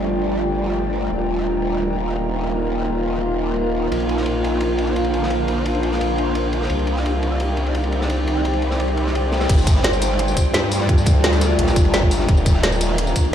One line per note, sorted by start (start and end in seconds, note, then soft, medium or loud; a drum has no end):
0.00 1.10 G1 medium
0.00 1.09 G3 medium
0.00 1.09 A3 medium
0.00 1.10 D4 medium
0.00 1.96 F4 medium
0.00 2.24 D5 medium
0.00 5.02 G5 medium
0.00 7.33 A#5 medium
1.12 3.90 D#1 medium
1.12 3.89 D#3 medium
1.12 6.66 A#3 medium
1.12 3.91 D#4 medium
1.12 6.66 F4 medium
1.28 7.82 A#4 medium
3.91 6.69 A#1 medium
3.91 6.70 D4 medium
3.91 6.68 C5 medium
3.91 ride medium
4.00 ride soft
4.09 7.82 F5 medium
4.09 ride medium
4.17 snare soft
4.26 ride medium
4.44 ride medium
4.61 ride medium
4.78 ride medium
4.87 ride soft
4.96 ride medium
5.04 ride soft
5.14 ride medium
5.23 snare medium
5.30 ride medium
5.48 ride medium
5.66 ride medium
5.75 ride soft
5.83 ride medium
5.92 snare soft
6.01 ride medium
6.18 ride medium
6.35 ride medium
6.53 ride medium
6.62 snare soft
6.70 9.48 C2 medium
6.70 9.47 C4 medium
6.70 9.49 D#4 medium
6.70 9.47 G4 medium
6.70 9.47 D5 medium
6.70 ride medium
6.76 10.31 C5 medium
6.76 ride soft
6.87 ride medium
6.97 snare soft
7.06 13.35 G5 medium
7.06 ride medium
7.23 ride medium
7.40 ride medium
7.57 10.29 C6 medium
7.57 ride medium
7.66 ride soft
7.75 ride medium
7.84 ride soft
7.92 ride medium
8.01 snare medium
8.10 ride medium
8.27 ride medium
8.45 ride medium
8.53 ride soft
8.62 ride medium
8.71 snare medium
8.80 ride medium
8.88 ride soft
8.97 ride medium
9.07 snare soft
9.15 ride medium
9.32 snare medium
9.32 ride medium
9.41 snare loud
9.41 ride medium
9.49 10.35 G1 medium
9.49 12.26 G3 medium
9.49 12.26 A3 medium
9.49 12.26 D4 medium
9.49 12.87 F4 medium
9.49 13.35 D5 medium
9.49 kick loud
9.49 closed hi-hat medium
9.49 crash loud
9.49 ride medium
9.58 ride soft
9.58 tambourine soft
9.67 kick loud
9.67 closed hi-hat medium
9.67 ride medium
9.67 tambourine medium
9.75 snare soft
9.84 snare loud
9.84 closed hi-hat medium
9.84 ride medium
9.93 tambourine soft
10.01 closed hi-hat loud
10.01 ride medium
10.01 tambourine medium
10.19 closed hi-hat medium
10.19 ride medium
10.28 13.35 A#5 medium
10.28 tambourine soft
10.37 kick medium
10.37 closed hi-hat medium
10.37 ride medium
10.37 tambourine medium
10.45 ride soft
10.54 11.05 G2 loud
10.54 snare loud
10.54 closed hi-hat medium
10.54 ride medium
10.63 ride soft
10.71 open hi-hat medium
10.71 ride medium
10.71 tambourine medium
10.80 snare medium
10.89 kick loud
10.89 closed hi-hat medium
10.89 ride medium
10.98 tambourine soft
11.06 11.57 D2 loud
11.06 kick loud
11.06 closed hi-hat loud
11.06 ride medium
11.06 tambourine medium
11.24 snare loud
11.24 closed hi-hat medium
11.24 ride medium
11.32 snare soft
11.32 ride soft
11.32 tambourine soft
11.41 snare loud
11.41 closed hi-hat loud
11.41 ride medium
11.41 tambourine medium
11.50 ride soft
11.59 11.75 A#1 loud
11.59 closed hi-hat medium
11.59 ride medium
11.67 snare loud
11.67 ride medium
11.67 tambourine soft
11.76 12.27 G1 loud
11.76 kick loud
11.76 closed hi-hat medium
11.76 ride soft
11.76 tambourine medium
11.85 ride medium
11.94 snare loud
11.94 closed hi-hat medium
11.94 ride medium
12.02 kick medium
12.11 open hi-hat medium
12.11 ride medium
12.11 tambourine medium
12.20 snare medium
12.29 13.14 D#1 loud
12.29 13.35 D#3 medium
12.29 13.35 A#3 medium
12.29 13.35 D#4 medium
12.29 13.35 F4 medium
12.29 kick loud
12.29 closed hi-hat medium
12.29 ride medium
12.37 ride soft
12.37 tambourine soft
12.46 kick loud
12.46 closed hi-hat loud
12.46 ride medium
12.46 tambourine medium
12.52 13.35 A#4 medium
12.52 snare soft
12.63 snare loud
12.63 closed hi-hat medium
12.63 ride medium
12.72 tambourine soft
12.81 closed hi-hat loud
12.81 ride medium
12.81 tambourine medium
12.98 closed hi-hat medium
12.98 ride medium
13.07 tambourine soft
13.16 kick medium
13.16 closed hi-hat medium
13.16 ride medium
13.16 tambourine medium
13.25 ride soft